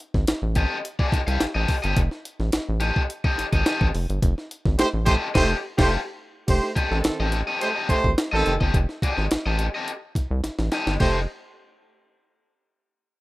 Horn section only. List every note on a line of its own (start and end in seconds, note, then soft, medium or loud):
4.78 4.88 A3 medium
4.78 4.88 G4 loud
4.78 4.88 C5 loud
5.05 5.15 A3 medium
5.05 5.16 G4 medium
5.05 5.15 C5 loud
5.34 5.49 A3 loud
5.34 5.50 G4 loud
5.34 5.49 C5 loud
5.78 5.92 A3 medium
5.78 5.92 G4 loud
5.78 5.92 C5 loud
6.48 6.70 A3 loud
6.48 6.71 G4 loud
6.48 6.71 C5 loud
6.91 7.30 D#3 medium
6.91 7.30 C4 medium
6.91 7.30 A4 medium
7.60 7.70 A3 medium
7.60 7.70 G4 medium
7.60 7.70 C5 medium
7.89 8.12 A3 loud
7.89 8.12 G4 medium
7.89 8.12 C5 loud
8.33 8.55 D#3 loud
8.33 8.55 C4 medium
8.33 8.55 A4 loud
11.00 11.20 A3 medium
11.00 11.20 G4 medium
11.00 11.20 C5 loud